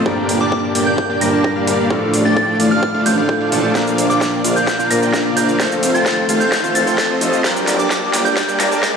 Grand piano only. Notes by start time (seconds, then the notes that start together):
0.05 G2 G3 A#3 D4 A#4
1.21 G2 G3 A#3 D4 A#4
1.67 G3 A#3 D4 A#4
1.89 A2 F3 A3 D4 A4
3.05 A2 F3 A3 D4 A4
3.51 A#2 F3 A3 D4 A4
3.74 A#2 F3 A#3 D4 A#4
4.90 A#2 F3 A#3 D4 A#4
5.36 F3 A#3 D4 A#4
5.59 F3 A3 C4 A4
6.74 F3 A3 C4 A4
7.21 F3 A3 C4 A4
7.43 G2 G3 A#3 D4 A#4
8.59 G2 G3 A#3 D4 A#4